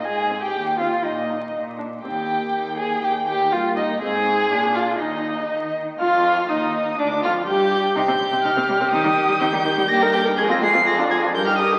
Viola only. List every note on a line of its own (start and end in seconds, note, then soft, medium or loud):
0.30 0.38 C4 soft
0.80 0.88 C4 soft
1.30 1.38 D#4 soft
1.78 1.86 D4 soft
2.04 2.12 C4 soft
2.28 3.49 A#3 soft
3.53 4.01 A#3 medium
4.02 4.26 C4 medium
4.26 4.52 C4 medium
4.51 5.01 D4 medium
4.99 5.80 D#4 soft
6.00 6.51 F4 medium
6.50 6.98 D#4 medium
6.98 7.22 D4 medium
7.23 7.47 F4 medium
7.47 7.95 G4 loud
7.96 8.01 D#4 medium
8.09 8.13 C4 medium
8.20 8.25 G3 medium
8.32 8.37 C4 medium
8.44 8.49 D#4 loud
8.57 8.62 C4 medium
8.69 8.74 G3 loud
8.81 8.85 C4 medium
8.92 8.97 C4 medium
9.05 9.09 G3 medium
9.17 9.22 D#3 medium
9.28 9.33 G3 medium
9.40 9.45 C4 loud
9.53 9.58 G3 medium
9.65 9.70 D#3 medium
9.77 9.82 G3 loud
9.90 10.03 A#3 medium
10.02 10.16 D#4 medium
10.14 10.27 A#3 medium
10.26 10.37 D#4 medium
10.37 10.51 G#3 medium
10.50 10.63 C4 medium
10.62 10.76 G#3 medium
10.74 10.86 C4 medium
10.87 11.00 F4 medium
10.99 11.12 D4 medium
11.11 11.25 F4 medium
11.23 11.35 D4 medium
11.36 11.49 G4 medium
11.47 11.61 D#4 medium
11.59 11.74 G4 medium
11.72 11.79 D#4 medium